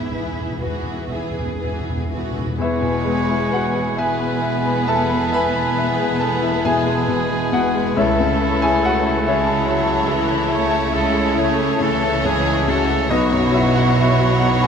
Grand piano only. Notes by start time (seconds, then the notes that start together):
Already playing: G#2 E4 B4 E5
0.12 B3
0.61 B4
1.10 E5
1.60 B4
2.10 E4
2.58 E2 E5
2.62 E4 B4
2.81 B2
3.05 G#3
3.29 E4
3.52 F#4 B4 F#5
3.74 G#4
3.97 G#4 E5 G#5
4.19 B5
4.42 E5
4.67 B5
4.88 A4 E5 A5
5.09 B5
5.32 B4 E5 G#5 B5
5.56 B5
5.78 E5
5.99 G#4
6.19 A4 B4 A5
6.42 E4
6.65 B2 G#4 E5 G#5
6.86 G#3
7.08 B2
7.30 G#3
7.52 B2 F#4 F#5
7.75 G#3
7.96 C#2 E4 C#5 E5
8.20 C#3
8.41 A3
8.62 E4 G#4 G#5
8.83 F#4 A4 F#5
9.06 E4
9.26 E4 C#5 E5
9.47 A5
9.68 E5
9.88 A5
10.08 E5
10.28 A5
10.48 E5
10.71 A5
10.93 E5
11.13 A4
11.35 E4
11.57 A3
11.79 C#3
12.03 A3
12.25 C#3
12.46 A3
12.67 C#3
12.89 A3
13.10 B1 D#4 B4 D#5
13.31 F#2
13.51 F#3 E4 E5
13.75 F#4 F#5
13.96 B4 E5
14.01 E4
14.18 F#4
14.39 F#4 F#5
14.61 G#5 B5